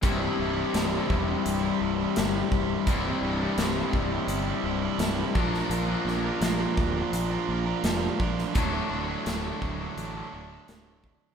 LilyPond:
<<
  \new Staff \with { instrumentName = "Overdriven electric guitar" } { \clef bass \time 4/4 \key c \mixolydian \tempo 4 = 84 <c, g, c g e'>16 <c g e'>16 <g, c g e'>16 <c g e'>16 <c, g, c g e'>8 <g, c g e'>16 <c g e'>8 <c g e'>16 <g, c g e'>16 <c g e'>16 <c, g, c g e'>8 <g, c g e'>8 | <c, g, c g e'>16 <c g e'>16 <g, c g e'>16 <c g e'>16 <c, g, c g e'>8 <g, c g e'>16 <c g e'>8 <c g e'>16 <g, c g e'>16 <c g e'>16 <c, g, c g e'>8 <bes, f bes d' f' bes'>8 | <bes, f bes d' f' bes'>16 <bes d' f' bes'>16 <bes d' f' bes'>16 <bes d' f' bes'>16 <bes, f bes d' f' bes'>8 <bes d' f' bes'>16 <bes d' f' bes'>8 <bes d' f' bes'>16 <bes d' f' bes'>16 <bes d' f' bes'>16 <bes, f bes d' f' bes'>8 <bes d' f' bes'>8 | <d, a, d fis a d'>16 <d fis a d'>16 <d fis a d'>16 <d fis a d'>16 <d, a, d fis a d'>8 <d fis a d'>16 <d fis a d'>8 <d fis a d'>16 <d fis a d'>16 <d fis a d'>16 <d, a, d fis a d'>8 <d fis a d'>8 | }
  \new Staff \with { instrumentName = "Overdriven electric guitar" } { \clef bass \time 4/4 \key c \mixolydian <c, g, c g e'>1 | <c, g, c g e'>2.~ <c, g, c g e'>8 <bes, f bes d' f' bes'>8~ | <bes, f bes d' f' bes'>2.~ <bes, f bes d' f' bes'>8 r8 | <d, a, d fis a d'>1 | }
  \new Staff \with { instrumentName = "Fingered electric bass" } { \clef bass \time 4/4 \key c \mixolydian c,,8 c,,8 c,,8 e,,8 c,,8 c,,8 g,,8 c,,8 | c,,8 c,,8 c,,8 c,,8 g,,8 c,,8 c,,8 bes,,8 | bes,,8 bes,,8 bes,,8 d,,8 bes,,8 bes,,8 f,,8 bes,,8 | d,,8 d,,8 d,,8 d,,8 a,,8 d,,8 d,,4 | }
  \new DrumStaff \with { instrumentName = "Drums" } \drummode { \time 4/4 <hh bd>4 <hh sn>8 bd8 hh4 <hh sn>8 bd8 | <hh bd>4 <hh sn>8 bd8 hh4 <hh sn>8 bd16 sn16 | hh8 sn8 <hh sn>8 bd8 hh4 <hh sn>8 bd16 sn16 | <hh bd>4 <hh sn>8 bd8 hh4 <hh sn>8 bd8 | }
>>